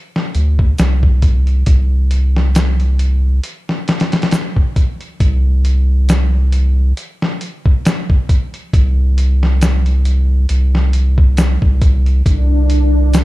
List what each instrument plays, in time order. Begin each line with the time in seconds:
0.16 snare
0.35 analog synth bass D2, closed hi-hat
0.59 kick
0.78 analog synth bass C2, snare, closed hi-hat, shaker
1.03 kick
1.22 kick, closed hi-hat
1.47 closed hi-hat
1.66 analog synth bass C2, kick, closed hi-hat
2.11 closed hi-hat
2.36 snare
2.55 snare, closed hi-hat, shaker
2.80 closed hi-hat
2.99 closed hi-hat
3.44 closed hi-hat
3.69 snare
3.88 snare, closed hi-hat
4.00 snare, closed hi-hat
4.12 snare, closed hi-hat
4.22 snare, closed hi-hat
4.31 snare, closed hi-hat, shaker
4.56 kick
4.76 kick, closed hi-hat
5.01 closed hi-hat
5.20 analog synth bass C2, kick, closed hi-hat
5.65 closed hi-hat
6.09 snare, closed hi-hat, shaker
6.52 closed hi-hat
6.97 closed hi-hat
7.22 snare
7.41 closed hi-hat
7.66 kick
7.85 snare, closed hi-hat, shaker
8.10 kick
8.29 kick, closed hi-hat
8.54 closed hi-hat
8.73 analog synth bass C2, kick, closed hi-hat
9.18 closed hi-hat
9.43 snare
9.61 snare, closed hi-hat, shaker
9.86 closed hi-hat
10.05 closed hi-hat
10.49 analog synth bass C2, closed hi-hat
10.75 snare
10.93 closed hi-hat
11.18 kick
11.37 snare, closed hi-hat, shaker
11.62 analog synth bass C2, kick
11.81 kick, closed hi-hat
12.06 closed hi-hat
12.26 analog synth bass C2, string machine D4, kick, closed hi-hat
12.70 closed hi-hat
13.14 snare, closed hi-hat, shaker